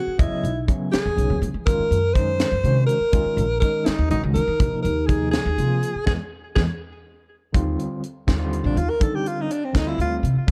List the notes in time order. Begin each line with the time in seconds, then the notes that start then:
Already playing: F#4
0.07 muted upright bass stroke
0.18 E2 C#3 F#3 B3 E4 D#5, kick, closed hi-hat
0.32 muted upright bass stroke
0.43 B1, closed hi-hat
0.67 C#3 F#3 B3 C#4, kick, closed hi-hat
0.92 G#4, muted upright bass stroke, snare, closed hi-hat
1.06 E2
1.15 B1 C#3 F#3 B3 C#4, closed hi-hat
1.30 D#2
1.42 E3, closed hi-hat
1.54 E3
1.66 F#2 D#3 G#3 C#4 F4 A#4, kick, closed hi-hat
1.79 muted upright bass stroke
1.91 F#2, closed hi-hat
2.14 D#3 G#3 C#4 D#4 C5, kick, closed hi-hat
2.39 snare, closed hi-hat
2.52 F#2
2.64 C3 D#3 G#3 C#4 F#4, closed hi-hat
2.86 A#4, closed hi-hat
3.00 muted upright bass stroke
3.12 D#2 D#3 G#3 C#4 F4, kick, closed hi-hat
3.25 muted upright bass stroke
3.37 A#1, closed hi-hat
3.60 D#3 G#3 C#4 D#4 A#4, kick, closed hi-hat
3.86 D#4, muted upright bass stroke, snare, closed hi-hat
3.99 D#2
4.10 A#1 D#3 G#3 C#4 D#4 F#4, closed hi-hat
4.24 C#2
4.34 D#3 A#4, closed hi-hat
4.47 D#3
4.60 D#2 C3 F3 A#3 D#4, kick, closed hi-hat
4.73 muted upright bass stroke
4.82 D#2 A#4, closed hi-hat
5.06 C3 F3 A#3 D#4 G#4, kick, closed hi-hat
5.31 G#4, snare, closed hi-hat
5.45 D#2
5.57 C3 F3 A#3 F4, closed hi-hat
5.83 closed hi-hat
5.95 muted upright bass stroke
6.06 E2 E3 G#3 B3 G#4, kick, snare
6.55 E2 E3 G#3 B3 G#4, kick, snare
7.53 D#2 D3 G3 C4 F4, kick, closed hi-hat
7.79 closed hi-hat
8.04 closed hi-hat
8.27 D#2 D3 G3 C4 F4, kick, snare, closed hi-hat
8.38 D3 G3 C4 F4
8.53 closed hi-hat
8.64 A#1 D4
8.76 D#2 F4, closed hi-hat
8.89 A#4
9.00 D3 D#3 G3 C4 D4 A4, kick, closed hi-hat
9.15 G4
9.26 F4, closed hi-hat
9.41 D#4
9.51 D4, closed hi-hat
9.64 C4
9.73 D2 D3 G3 C4 D#4 F4, kick, snare, closed hi-hat
9.85 D3 G3 C4 E4 F4
9.98 D2 F4, closed hi-hat
10.23 C3, closed hi-hat
10.36 muted upright bass stroke
10.47 G3 C4, closed hi-hat